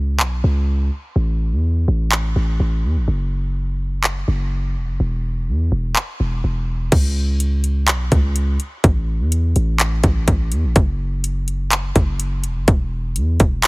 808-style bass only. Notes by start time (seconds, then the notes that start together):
Already playing: C#2
0.20 B1
0.44 C#2
1.16 A1
1.52 E2
1.88 A1
2.36 A1
2.60 A1
2.84 E2
2.96 A1
3.08 F#1
4.28 F#1
4.76 E1
4.88 F#1
5.00 E1
5.48 E2
5.72 E1
6.20 E1
6.44 E1
6.92 C#2
7.88 B1
8.12 C#2
8.84 A1
9.20 E2
9.56 A1
10.04 A1
10.28 A1
10.52 E2
10.64 A1
10.76 F#1
11.96 F#1
12.44 E1
12.56 F#1
12.68 E1
13.16 E2
13.40 E1